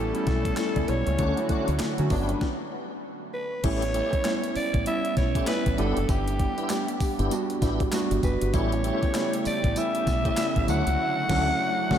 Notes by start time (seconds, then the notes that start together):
Already playing: A1 G3 A3 B3 C#4 E4 A4
0.15 G3 B3 C#4 E4, closed hi-hat
0.27 B1, kick, snare, closed hi-hat
0.45 kick, closed hi-hat
0.57 snare, clap, closed hi-hat
0.76 C#2 G3 B3 C#4 E4, kick, closed hi-hat
0.88 B1 C#5, closed hi-hat
1.07 C#2, closed hi-hat
1.19 D2 D3 A3 C#4 D4 F#4, kick, closed hi-hat
1.37 F#3 A3 C#4 E4, closed hi-hat
1.49 A3 C#4 D4 F#4, kick, closed hi-hat
1.68 D2, closed hi-hat
1.79 snare, clap, closed hi-hat
1.98 D3 F#3 A3 C#4 F#4, closed hi-hat
2.10 G1 F#3 G3 A3 B3 D4 F#4 B4, kick, open hi-hat
2.29 closed hi-hat
2.41 kick, snare
3.34 B4
3.64 A1 G3 A3 B3 C#4 E4 G4 C#5, kick, closed hi-hat, crash
3.82 closed hi-hat
3.94 A3 C#4 E4 G4, closed hi-hat
4.13 kick, closed hi-hat
4.25 G3 B3 C#4 E4, snare, clap, closed hi-hat
4.44 closed hi-hat
4.56 D5, muted fingered electric bass stroke, open hi-hat
4.74 A1, kick, closed hi-hat
4.86 G3 B3 C#4 E4 E5, closed hi-hat
5.05 closed hi-hat
5.17 B1 C#5, kick, snare, closed hi-hat
5.35 A3 C#4 E4 G4, kick, closed hi-hat
5.47 G3 B3 C#4 E4 B4, snare, clap, closed hi-hat
5.66 A1, kick, closed hi-hat
5.78 G1 G3 B3 D4 E4 G4 A4 F#5, closed hi-hat
5.97 F#1, closed hi-hat
6.09 G1 G4, kick, closed hi-hat, tambourine
6.28 closed hi-hat
6.39 kick, closed hi-hat
6.57 B3 D4 E4 G4, closed hi-hat
6.69 G3 B3 D4 G4, snare, clap, closed hi-hat, tambourine
6.88 closed hi-hat
7.01 muted fingered electric bass stroke, kick, open hi-hat, tambourine
7.19 G1 B3 D4 E4 G4, closed hi-hat
7.31 G3 B3 D4 F#4, closed hi-hat, tambourine
7.50 closed hi-hat
7.61 A1 B3 D4 E4 G4, kick, snare, closed hi-hat, tambourine
7.80 kick, closed hi-hat
7.92 G3 B3 D4 F#4, snare, clap, closed hi-hat, tambourine
8.11 G1, closed hi-hat
8.23 F#1 B4, kick, closed hi-hat, tambourine
8.41 G1, closed hi-hat
8.53 A1 C#3 G3 A3 B3 C#4 E4 G4 C#5, kick, closed hi-hat, tambourine
8.72 closed hi-hat
8.84 A3 C#4 E4 G4, closed hi-hat
9.03 kick, closed hi-hat
9.14 G3 B3 C#4 E4, snare, clap, closed hi-hat, tambourine
9.33 closed hi-hat
9.45 D5, muted fingered electric bass stroke, open hi-hat, tambourine
9.64 A1, kick, closed hi-hat
9.76 G3 B3 C#4 E4 E5, closed hi-hat, tambourine
9.95 closed hi-hat
10.07 B1, kick, snare, closed hi-hat, tambourine
10.25 A3 C#4 E4 G4, kick, closed hi-hat
10.37 G3 B3 C#4 E4, snare, clap, closed hi-hat, tambourine
10.56 A1, kick, closed hi-hat
10.68 D2 D3 F#3 A3 C#4 D4 E4 F#4 F#5, closed hi-hat, tambourine
10.87 C#2, closed hi-hat
11.29 D2 F#3 A3 C#4 D4 F#4, kick, snare, crash
11.90 D2 F#3 A3 C#4 D4 F#4, kick, snare